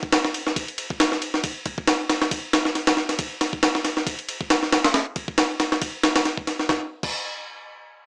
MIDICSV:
0, 0, Header, 1, 2, 480
1, 0, Start_track
1, 0, Tempo, 437956
1, 1574, Time_signature, 4, 2, 24, 8
1, 8834, End_track
2, 0, Start_track
2, 0, Title_t, "Drums"
2, 30, Note_on_c, 9, 36, 88
2, 137, Note_on_c, 9, 38, 114
2, 137, Note_on_c, 9, 51, 86
2, 140, Note_off_c, 9, 36, 0
2, 247, Note_off_c, 9, 38, 0
2, 247, Note_off_c, 9, 51, 0
2, 269, Note_on_c, 9, 38, 43
2, 376, Note_on_c, 9, 51, 67
2, 379, Note_off_c, 9, 38, 0
2, 486, Note_off_c, 9, 51, 0
2, 511, Note_on_c, 9, 38, 38
2, 617, Note_on_c, 9, 36, 104
2, 617, Note_on_c, 9, 51, 80
2, 621, Note_off_c, 9, 38, 0
2, 727, Note_off_c, 9, 36, 0
2, 727, Note_off_c, 9, 51, 0
2, 749, Note_on_c, 9, 51, 40
2, 855, Note_off_c, 9, 51, 0
2, 855, Note_on_c, 9, 51, 65
2, 964, Note_off_c, 9, 51, 0
2, 990, Note_on_c, 9, 36, 90
2, 1096, Note_on_c, 9, 38, 107
2, 1096, Note_on_c, 9, 51, 84
2, 1100, Note_off_c, 9, 36, 0
2, 1206, Note_off_c, 9, 38, 0
2, 1206, Note_off_c, 9, 51, 0
2, 1226, Note_on_c, 9, 38, 39
2, 1335, Note_on_c, 9, 51, 64
2, 1336, Note_off_c, 9, 38, 0
2, 1445, Note_off_c, 9, 51, 0
2, 1469, Note_on_c, 9, 38, 41
2, 1574, Note_on_c, 9, 51, 84
2, 1576, Note_on_c, 9, 36, 106
2, 1578, Note_off_c, 9, 38, 0
2, 1684, Note_off_c, 9, 51, 0
2, 1686, Note_off_c, 9, 36, 0
2, 1815, Note_on_c, 9, 51, 63
2, 1816, Note_on_c, 9, 36, 84
2, 1924, Note_off_c, 9, 51, 0
2, 1926, Note_off_c, 9, 36, 0
2, 1949, Note_on_c, 9, 36, 90
2, 2055, Note_on_c, 9, 38, 111
2, 2055, Note_on_c, 9, 51, 80
2, 2059, Note_off_c, 9, 36, 0
2, 2165, Note_off_c, 9, 38, 0
2, 2165, Note_off_c, 9, 51, 0
2, 2296, Note_on_c, 9, 38, 53
2, 2296, Note_on_c, 9, 51, 65
2, 2406, Note_off_c, 9, 38, 0
2, 2406, Note_off_c, 9, 51, 0
2, 2428, Note_on_c, 9, 38, 54
2, 2535, Note_on_c, 9, 51, 82
2, 2536, Note_on_c, 9, 36, 103
2, 2538, Note_off_c, 9, 38, 0
2, 2645, Note_off_c, 9, 51, 0
2, 2646, Note_off_c, 9, 36, 0
2, 2777, Note_on_c, 9, 38, 95
2, 2777, Note_on_c, 9, 51, 76
2, 2886, Note_off_c, 9, 38, 0
2, 2886, Note_off_c, 9, 51, 0
2, 2908, Note_on_c, 9, 38, 39
2, 3017, Note_off_c, 9, 38, 0
2, 3017, Note_on_c, 9, 38, 30
2, 3017, Note_on_c, 9, 51, 57
2, 3127, Note_off_c, 9, 38, 0
2, 3127, Note_off_c, 9, 51, 0
2, 3148, Note_on_c, 9, 38, 100
2, 3148, Note_on_c, 9, 51, 70
2, 3255, Note_off_c, 9, 38, 0
2, 3255, Note_on_c, 9, 38, 41
2, 3258, Note_off_c, 9, 51, 0
2, 3365, Note_off_c, 9, 38, 0
2, 3388, Note_on_c, 9, 38, 34
2, 3388, Note_on_c, 9, 51, 58
2, 3493, Note_off_c, 9, 51, 0
2, 3493, Note_on_c, 9, 51, 86
2, 3495, Note_on_c, 9, 36, 105
2, 3497, Note_off_c, 9, 38, 0
2, 3603, Note_off_c, 9, 51, 0
2, 3605, Note_off_c, 9, 36, 0
2, 3737, Note_on_c, 9, 38, 45
2, 3737, Note_on_c, 9, 51, 66
2, 3847, Note_off_c, 9, 38, 0
2, 3847, Note_off_c, 9, 51, 0
2, 3869, Note_on_c, 9, 36, 85
2, 3976, Note_on_c, 9, 38, 105
2, 3976, Note_on_c, 9, 51, 84
2, 3978, Note_off_c, 9, 36, 0
2, 4086, Note_off_c, 9, 38, 0
2, 4086, Note_off_c, 9, 51, 0
2, 4110, Note_on_c, 9, 38, 44
2, 4215, Note_off_c, 9, 38, 0
2, 4215, Note_on_c, 9, 38, 36
2, 4215, Note_on_c, 9, 51, 64
2, 4324, Note_off_c, 9, 38, 0
2, 4324, Note_off_c, 9, 51, 0
2, 4350, Note_on_c, 9, 38, 38
2, 4456, Note_on_c, 9, 36, 103
2, 4457, Note_on_c, 9, 51, 84
2, 4459, Note_off_c, 9, 38, 0
2, 4566, Note_off_c, 9, 36, 0
2, 4566, Note_off_c, 9, 51, 0
2, 4590, Note_on_c, 9, 51, 40
2, 4697, Note_off_c, 9, 51, 0
2, 4697, Note_on_c, 9, 51, 66
2, 4807, Note_off_c, 9, 51, 0
2, 4829, Note_on_c, 9, 36, 94
2, 4935, Note_on_c, 9, 38, 107
2, 4935, Note_on_c, 9, 51, 81
2, 4939, Note_off_c, 9, 36, 0
2, 5045, Note_off_c, 9, 38, 0
2, 5045, Note_off_c, 9, 51, 0
2, 5070, Note_on_c, 9, 38, 39
2, 5179, Note_off_c, 9, 38, 0
2, 5179, Note_on_c, 9, 38, 94
2, 5179, Note_on_c, 9, 51, 71
2, 5288, Note_off_c, 9, 38, 0
2, 5288, Note_off_c, 9, 51, 0
2, 5310, Note_on_c, 9, 38, 100
2, 5310, Note_on_c, 9, 51, 74
2, 5415, Note_off_c, 9, 38, 0
2, 5415, Note_off_c, 9, 51, 0
2, 5415, Note_on_c, 9, 38, 97
2, 5415, Note_on_c, 9, 51, 72
2, 5525, Note_off_c, 9, 38, 0
2, 5525, Note_off_c, 9, 51, 0
2, 5654, Note_on_c, 9, 51, 63
2, 5655, Note_on_c, 9, 36, 87
2, 5763, Note_off_c, 9, 51, 0
2, 5765, Note_off_c, 9, 36, 0
2, 5788, Note_on_c, 9, 36, 85
2, 5894, Note_on_c, 9, 38, 108
2, 5894, Note_on_c, 9, 51, 83
2, 5897, Note_off_c, 9, 36, 0
2, 6004, Note_off_c, 9, 38, 0
2, 6004, Note_off_c, 9, 51, 0
2, 6135, Note_on_c, 9, 38, 50
2, 6135, Note_on_c, 9, 51, 63
2, 6244, Note_off_c, 9, 38, 0
2, 6244, Note_off_c, 9, 51, 0
2, 6270, Note_on_c, 9, 38, 52
2, 6373, Note_on_c, 9, 51, 80
2, 6375, Note_on_c, 9, 36, 102
2, 6379, Note_off_c, 9, 38, 0
2, 6483, Note_off_c, 9, 51, 0
2, 6484, Note_off_c, 9, 36, 0
2, 6614, Note_on_c, 9, 38, 99
2, 6614, Note_on_c, 9, 51, 73
2, 6724, Note_off_c, 9, 38, 0
2, 6724, Note_off_c, 9, 51, 0
2, 6747, Note_on_c, 9, 38, 94
2, 6747, Note_on_c, 9, 51, 75
2, 6854, Note_off_c, 9, 38, 0
2, 6854, Note_off_c, 9, 51, 0
2, 6854, Note_on_c, 9, 38, 40
2, 6854, Note_on_c, 9, 51, 55
2, 6964, Note_off_c, 9, 38, 0
2, 6964, Note_off_c, 9, 51, 0
2, 6987, Note_on_c, 9, 36, 79
2, 7095, Note_on_c, 9, 38, 31
2, 7095, Note_on_c, 9, 51, 55
2, 7096, Note_off_c, 9, 36, 0
2, 7204, Note_off_c, 9, 38, 0
2, 7204, Note_off_c, 9, 51, 0
2, 7228, Note_on_c, 9, 38, 36
2, 7334, Note_off_c, 9, 38, 0
2, 7334, Note_on_c, 9, 36, 109
2, 7334, Note_on_c, 9, 38, 77
2, 7443, Note_off_c, 9, 36, 0
2, 7444, Note_off_c, 9, 38, 0
2, 7707, Note_on_c, 9, 36, 102
2, 7709, Note_on_c, 9, 49, 81
2, 7817, Note_off_c, 9, 36, 0
2, 7818, Note_off_c, 9, 49, 0
2, 8834, End_track
0, 0, End_of_file